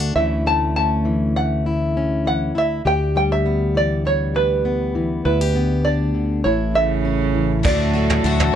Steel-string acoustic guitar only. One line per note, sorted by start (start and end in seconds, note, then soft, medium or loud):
0.00 0.14 D2 medium
0.00 0.15 D3 medium
0.00 0.12 A3 medium
0.00 0.15 D4 soft
0.00 0.12 F#4 medium
0.15 2.53 D2 medium
0.15 1.05 E3 soft
0.15 0.45 A3 soft
0.15 0.75 C#4 soft
0.15 1.66 E4 medium
0.46 1.35 A3 medium
0.76 1.96 C#4 soft
1.05 2.24 E3 medium
1.36 2.52 A3 medium
1.66 2.54 E4 medium
1.97 2.52 C#4 soft
2.25 2.52 E3 medium
2.55 2.84 D2 medium
2.55 2.85 E4 medium
2.85 5.24 D2 medium
2.85 4.33 G4 medium
3.16 4.04 G3 soft
3.46 4.64 B3 medium
3.75 4.94 E3 medium
4.05 5.55 G3 soft
4.35 5.21 G4 soft
4.65 5.54 B3 medium
4.95 5.21 E3 medium
5.26 6.45 D2 medium
5.26 5.41 E4 medium
5.41 6.45 G4 medium
5.55 6.41 B3 medium
5.85 6.41 D4 medium
6.15 6.45 D3 medium
6.45 7.64 A2 medium
6.45 7.65 E4 medium
6.75 7.61 A3 soft
7.05 7.61 C#4 soft
7.34 7.61 E3 soft